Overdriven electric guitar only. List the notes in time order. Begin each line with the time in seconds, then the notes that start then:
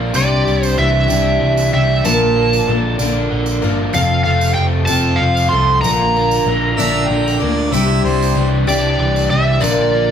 Already playing: D3 A#3 D4
0.13 C3
0.45 G3
0.77 E3
1.09 D4
1.39 E3
1.74 G3
2.04 A#2
2.36 A#3
2.67 D3
2.99 D4
3.31 D3
3.62 A#3
3.93 F2
4.25 A3
4.58 F3
4.89 C4
5.22 F3
5.53 A3
5.84 A#2
6.16 A#3
6.48 D3
6.80 D4
7.11 D3
7.42 A#3
7.73 C3
8.05 G3
8.37 E3
8.69 D4
9.00 E3
9.32 G3
9.63 A#2
9.94 A#3